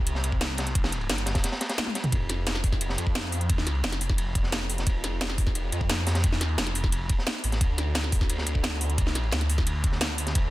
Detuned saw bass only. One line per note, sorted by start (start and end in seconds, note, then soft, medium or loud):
0.00 0.22 C2 medium
0.24 1.08 C2 loud
1.09 1.44 G1 loud
2.12 2.97 F1 loud
2.98 3.82 F2 loud
3.84 4.85 F1 loud
4.87 5.71 F1 medium
5.72 6.32 F2 loud
6.32 6.57 E2 loud
6.58 7.08 F1 loud
7.44 7.60 A1 medium
7.61 8.45 D2 loud
8.47 9.31 D2 loud
9.32 10.34 D2 loud
10.35 10.50 D2 loud